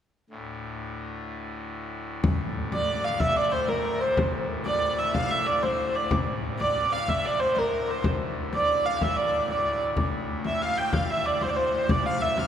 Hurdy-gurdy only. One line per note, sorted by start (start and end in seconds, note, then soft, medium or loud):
2.74 3.04 D5 medium
3.04 3.20 F5 medium
3.20 3.37 E5 medium
3.37 3.53 D5 medium
3.52 3.69 C5 medium
3.69 4.01 A#4 medium
4.01 4.16 C5 medium
4.66 4.99 D5 medium
4.99 5.15 E5 medium
5.15 5.31 F5 medium
5.31 5.46 E5 medium
5.46 5.62 D5 medium
5.62 5.95 C5 medium
5.95 6.10 D5 medium
6.59 6.92 D5 medium
6.92 7.09 F5 medium
7.09 7.25 E5 medium
7.25 7.40 D5 medium
7.40 7.59 C5 medium
7.59 7.91 A#4 medium
7.91 8.05 C5 medium
8.54 8.86 D5 medium
8.86 8.97 F5 medium
8.97 9.02 F5 medium
9.02 9.17 E5 medium
9.17 9.49 D5 medium
9.49 9.83 D5 medium
10.46 10.62 E5 medium
10.62 10.78 F5 medium
10.78 10.94 G5 medium
10.94 11.10 F5 medium
11.10 11.26 E5 medium
11.26 11.42 D5 medium
11.42 11.48 C5 medium
11.48 11.56 D5 medium
11.56 11.74 C5 medium
11.74 11.91 C5 medium
11.91 12.06 D5 medium
12.06 12.22 F5 medium
12.22 12.39 E5 medium
12.39 12.47 F5 medium